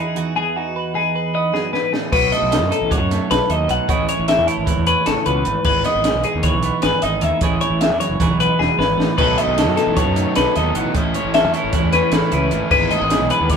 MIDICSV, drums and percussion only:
0, 0, Header, 1, 2, 480
1, 0, Start_track
1, 0, Key_signature, 4, "major"
1, 0, Tempo, 392413
1, 437, Time_signature, 9, 3, 24, 8
1, 16598, End_track
2, 0, Start_track
2, 0, Title_t, "Drums"
2, 198, Note_on_c, 9, 42, 55
2, 320, Note_off_c, 9, 42, 0
2, 1890, Note_on_c, 9, 38, 54
2, 2012, Note_off_c, 9, 38, 0
2, 2128, Note_on_c, 9, 38, 62
2, 2250, Note_off_c, 9, 38, 0
2, 2369, Note_on_c, 9, 38, 88
2, 2492, Note_off_c, 9, 38, 0
2, 2599, Note_on_c, 9, 36, 108
2, 2600, Note_on_c, 9, 49, 120
2, 2722, Note_off_c, 9, 36, 0
2, 2723, Note_off_c, 9, 49, 0
2, 2842, Note_on_c, 9, 42, 72
2, 2855, Note_on_c, 9, 38, 34
2, 2964, Note_off_c, 9, 42, 0
2, 2977, Note_off_c, 9, 38, 0
2, 3084, Note_on_c, 9, 42, 102
2, 3097, Note_on_c, 9, 38, 111
2, 3206, Note_off_c, 9, 42, 0
2, 3220, Note_off_c, 9, 38, 0
2, 3326, Note_on_c, 9, 42, 74
2, 3448, Note_off_c, 9, 42, 0
2, 3562, Note_on_c, 9, 36, 101
2, 3568, Note_on_c, 9, 42, 96
2, 3684, Note_off_c, 9, 36, 0
2, 3691, Note_off_c, 9, 42, 0
2, 3808, Note_on_c, 9, 42, 71
2, 3821, Note_on_c, 9, 38, 36
2, 3930, Note_off_c, 9, 42, 0
2, 3943, Note_off_c, 9, 38, 0
2, 4047, Note_on_c, 9, 42, 94
2, 4060, Note_on_c, 9, 38, 108
2, 4169, Note_off_c, 9, 42, 0
2, 4182, Note_off_c, 9, 38, 0
2, 4278, Note_on_c, 9, 42, 73
2, 4400, Note_off_c, 9, 42, 0
2, 4516, Note_on_c, 9, 42, 74
2, 4639, Note_off_c, 9, 42, 0
2, 4756, Note_on_c, 9, 42, 92
2, 4757, Note_on_c, 9, 36, 111
2, 4879, Note_off_c, 9, 36, 0
2, 4879, Note_off_c, 9, 42, 0
2, 4997, Note_on_c, 9, 42, 70
2, 5120, Note_off_c, 9, 42, 0
2, 5235, Note_on_c, 9, 42, 91
2, 5249, Note_on_c, 9, 38, 111
2, 5358, Note_off_c, 9, 42, 0
2, 5371, Note_off_c, 9, 38, 0
2, 5478, Note_on_c, 9, 42, 74
2, 5601, Note_off_c, 9, 42, 0
2, 5713, Note_on_c, 9, 36, 112
2, 5715, Note_on_c, 9, 42, 92
2, 5836, Note_off_c, 9, 36, 0
2, 5838, Note_off_c, 9, 42, 0
2, 5952, Note_on_c, 9, 42, 68
2, 6074, Note_off_c, 9, 42, 0
2, 6191, Note_on_c, 9, 42, 94
2, 6204, Note_on_c, 9, 38, 100
2, 6313, Note_off_c, 9, 42, 0
2, 6327, Note_off_c, 9, 38, 0
2, 6432, Note_on_c, 9, 42, 71
2, 6554, Note_off_c, 9, 42, 0
2, 6668, Note_on_c, 9, 42, 71
2, 6790, Note_off_c, 9, 42, 0
2, 6904, Note_on_c, 9, 57, 97
2, 6908, Note_on_c, 9, 36, 114
2, 7027, Note_off_c, 9, 57, 0
2, 7030, Note_off_c, 9, 36, 0
2, 7148, Note_on_c, 9, 42, 74
2, 7161, Note_on_c, 9, 38, 36
2, 7270, Note_off_c, 9, 42, 0
2, 7284, Note_off_c, 9, 38, 0
2, 7389, Note_on_c, 9, 42, 104
2, 7402, Note_on_c, 9, 38, 118
2, 7511, Note_off_c, 9, 42, 0
2, 7525, Note_off_c, 9, 38, 0
2, 7626, Note_on_c, 9, 42, 73
2, 7749, Note_off_c, 9, 42, 0
2, 7865, Note_on_c, 9, 42, 100
2, 7868, Note_on_c, 9, 36, 110
2, 7987, Note_off_c, 9, 42, 0
2, 7991, Note_off_c, 9, 36, 0
2, 8105, Note_on_c, 9, 42, 76
2, 8227, Note_off_c, 9, 42, 0
2, 8342, Note_on_c, 9, 42, 94
2, 8355, Note_on_c, 9, 38, 105
2, 8464, Note_off_c, 9, 42, 0
2, 8478, Note_off_c, 9, 38, 0
2, 8586, Note_on_c, 9, 42, 76
2, 8599, Note_on_c, 9, 38, 33
2, 8708, Note_off_c, 9, 42, 0
2, 8722, Note_off_c, 9, 38, 0
2, 8822, Note_on_c, 9, 42, 72
2, 8945, Note_off_c, 9, 42, 0
2, 9063, Note_on_c, 9, 42, 98
2, 9069, Note_on_c, 9, 36, 112
2, 9186, Note_off_c, 9, 42, 0
2, 9191, Note_off_c, 9, 36, 0
2, 9308, Note_on_c, 9, 42, 70
2, 9430, Note_off_c, 9, 42, 0
2, 9552, Note_on_c, 9, 42, 90
2, 9566, Note_on_c, 9, 38, 112
2, 9675, Note_off_c, 9, 42, 0
2, 9688, Note_off_c, 9, 38, 0
2, 9792, Note_on_c, 9, 42, 67
2, 9806, Note_on_c, 9, 38, 36
2, 9915, Note_off_c, 9, 42, 0
2, 9928, Note_off_c, 9, 38, 0
2, 10030, Note_on_c, 9, 36, 108
2, 10034, Note_on_c, 9, 42, 86
2, 10048, Note_on_c, 9, 38, 36
2, 10153, Note_off_c, 9, 36, 0
2, 10156, Note_off_c, 9, 42, 0
2, 10170, Note_off_c, 9, 38, 0
2, 10277, Note_on_c, 9, 42, 72
2, 10399, Note_off_c, 9, 42, 0
2, 10530, Note_on_c, 9, 38, 63
2, 10652, Note_off_c, 9, 38, 0
2, 10767, Note_on_c, 9, 38, 76
2, 10889, Note_off_c, 9, 38, 0
2, 11011, Note_on_c, 9, 38, 102
2, 11133, Note_off_c, 9, 38, 0
2, 11232, Note_on_c, 9, 36, 116
2, 11234, Note_on_c, 9, 55, 83
2, 11234, Note_on_c, 9, 57, 91
2, 11354, Note_off_c, 9, 36, 0
2, 11356, Note_off_c, 9, 55, 0
2, 11356, Note_off_c, 9, 57, 0
2, 11472, Note_on_c, 9, 42, 76
2, 11595, Note_off_c, 9, 42, 0
2, 11716, Note_on_c, 9, 42, 103
2, 11729, Note_on_c, 9, 38, 116
2, 11838, Note_off_c, 9, 42, 0
2, 11851, Note_off_c, 9, 38, 0
2, 11955, Note_on_c, 9, 42, 75
2, 11969, Note_on_c, 9, 38, 36
2, 12078, Note_off_c, 9, 42, 0
2, 12091, Note_off_c, 9, 38, 0
2, 12191, Note_on_c, 9, 42, 99
2, 12192, Note_on_c, 9, 36, 104
2, 12313, Note_off_c, 9, 42, 0
2, 12314, Note_off_c, 9, 36, 0
2, 12431, Note_on_c, 9, 42, 72
2, 12553, Note_off_c, 9, 42, 0
2, 12666, Note_on_c, 9, 42, 101
2, 12679, Note_on_c, 9, 38, 113
2, 12788, Note_off_c, 9, 42, 0
2, 12802, Note_off_c, 9, 38, 0
2, 12912, Note_on_c, 9, 42, 70
2, 12925, Note_on_c, 9, 38, 35
2, 13034, Note_off_c, 9, 42, 0
2, 13047, Note_off_c, 9, 38, 0
2, 13149, Note_on_c, 9, 42, 68
2, 13271, Note_off_c, 9, 42, 0
2, 13389, Note_on_c, 9, 42, 93
2, 13390, Note_on_c, 9, 36, 106
2, 13511, Note_off_c, 9, 42, 0
2, 13512, Note_off_c, 9, 36, 0
2, 13632, Note_on_c, 9, 42, 73
2, 13754, Note_off_c, 9, 42, 0
2, 13870, Note_on_c, 9, 42, 91
2, 13883, Note_on_c, 9, 38, 108
2, 13992, Note_off_c, 9, 42, 0
2, 14006, Note_off_c, 9, 38, 0
2, 14112, Note_on_c, 9, 42, 73
2, 14234, Note_off_c, 9, 42, 0
2, 14345, Note_on_c, 9, 42, 92
2, 14348, Note_on_c, 9, 36, 109
2, 14467, Note_off_c, 9, 42, 0
2, 14470, Note_off_c, 9, 36, 0
2, 14586, Note_on_c, 9, 42, 73
2, 14600, Note_on_c, 9, 38, 36
2, 14709, Note_off_c, 9, 42, 0
2, 14722, Note_off_c, 9, 38, 0
2, 14821, Note_on_c, 9, 42, 100
2, 14834, Note_on_c, 9, 38, 110
2, 14943, Note_off_c, 9, 42, 0
2, 14956, Note_off_c, 9, 38, 0
2, 15065, Note_on_c, 9, 42, 78
2, 15188, Note_off_c, 9, 42, 0
2, 15302, Note_on_c, 9, 42, 70
2, 15425, Note_off_c, 9, 42, 0
2, 15546, Note_on_c, 9, 36, 115
2, 15546, Note_on_c, 9, 49, 97
2, 15668, Note_off_c, 9, 36, 0
2, 15668, Note_off_c, 9, 49, 0
2, 15787, Note_on_c, 9, 42, 76
2, 15909, Note_off_c, 9, 42, 0
2, 16029, Note_on_c, 9, 42, 104
2, 16042, Note_on_c, 9, 38, 105
2, 16151, Note_off_c, 9, 42, 0
2, 16165, Note_off_c, 9, 38, 0
2, 16270, Note_on_c, 9, 42, 81
2, 16392, Note_off_c, 9, 42, 0
2, 16508, Note_on_c, 9, 42, 103
2, 16511, Note_on_c, 9, 36, 106
2, 16598, Note_off_c, 9, 36, 0
2, 16598, Note_off_c, 9, 42, 0
2, 16598, End_track
0, 0, End_of_file